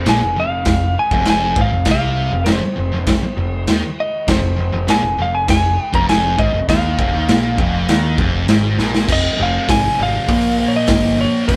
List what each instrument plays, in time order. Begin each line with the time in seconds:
Already playing: electric slide guitar C5
0.05 picked electric bass A#1, distorted electric guitar A#2, electric slide guitar G#5, snare, crash
0.21 picked electric bass F1, distorted electric guitar F2
0.36 picked electric bass F1, distorted electric guitar F2, electric slide guitar F5
0.65 picked electric bass F1, distorted electric guitar F2, kick, snare, crash
0.99 electric slide guitar G#5
1.11 picked electric bass F1, distorted electric guitar F2, kick
1.25 snare, crash
1.30 electric slide guitar G#5
1.56 picked electric bass G#1, distorted electric guitar G#2, kick
1.61 electric slide guitar F5
1.71 picked electric bass F1, distorted electric guitar F2
1.85 picked electric bass C2, distorted electric guitar C3, kick, snare, crash
1.91 electric slide guitar F5
2.32 picked electric bass F1, distorted electric guitar F2
2.45 picked electric bass F1, distorted electric guitar F2, electric slide guitar A#4, snare, crash
2.52 electric slide guitar C5
2.61 muted distorted electric guitar stroke, muted picked electric bass stroke
2.76 picked electric bass F1, distorted electric guitar F2
2.92 picked electric bass F1, distorted electric guitar F2
3.07 picked electric bass F1, distorted electric guitar F2, kick, snare, crash
3.22 muted picked electric bass stroke, muted distorted electric guitar stroke
3.37 picked electric bass F1, distorted electric guitar F2
3.67 picked electric bass D#2, distorted electric guitar D#3, snare, crash
4.00 electric slide guitar D#5
4.28 picked electric bass F1, distorted electric guitar F2, electric slide guitar C5, kick, snare, crash
4.41 picked electric bass F1, distorted electric guitar F2
4.56 picked electric bass F1, distorted electric guitar F2
4.72 picked electric bass F1, distorted electric guitar F2
4.88 picked electric bass A#1, distorted electric guitar A#2, electric slide guitar G#5, snare, crash
5.02 picked electric bass F1, distorted electric guitar F2
5.17 picked electric bass F1, distorted electric guitar F2
5.22 electric slide guitar F5
5.35 electric slide guitar G#5
5.48 picked electric bass F1, distorted electric guitar F2, electric slide guitar G#5, kick, snare, crash
5.81 electric slide guitar G5
5.92 picked electric bass F1, distorted electric guitar F2, electric slide guitar A#5, kick
6.09 electric slide guitar G#5, snare, crash
6.38 picked electric bass G#1, distorted electric guitar G#2, electric slide guitar D#5, kick
6.53 picked electric bass F1, distorted electric guitar F2
6.69 picked electric bass D#2, distorted electric guitar D#3, electric slide guitar F5, kick, snare, crash
6.98 picked electric bass F1, distorted electric guitar F2, kick
7.12 picked electric bass D#2, distorted electric guitar D#3
7.28 picked electric bass A#1, distorted electric guitar A#2, snare, crash
7.57 picked electric bass F1, distorted electric guitar F2, kick
7.88 picked electric bass D#2, distorted electric guitar D#3, snare, crash
8.18 picked electric bass F1, distorted electric guitar F2, kick
8.48 picked electric bass G#1, distorted electric guitar G#2, snare, crash
8.78 picked electric bass A#1, distorted electric guitar A#2, snare
8.95 snare
9.08 picked electric bass F1, distorted electric guitar F2 C3 F3, kick, crash
9.12 electric slide guitar D#5
9.37 picked electric bass F1, distorted electric guitar F2 C3 F3
9.43 electric slide guitar F5
9.68 picked electric bass G#1, distorted electric guitar F2 C3 F3, electric slide guitar G#5, kick, snare, open hi-hat
9.98 picked electric bass G#1, distorted electric guitar F2 C3 F3
10.03 electric slide guitar F5
10.27 picked electric bass A#1, distorted electric guitar A#2 F3 A#3, kick, open hi-hat
10.58 distorted electric guitar A#2 F3 A#3
10.68 electric slide guitar C#5
10.76 electric slide guitar D#5
10.87 picked electric bass G1, distorted electric guitar A#2 F3 A#3, kick, snare, open hi-hat
11.18 distorted electric guitar A#2 F3 A#3, electric slide guitar C#5
11.48 picked electric bass F1, distorted electric guitar F2 C3 F3, electric slide guitar C5, kick, open hi-hat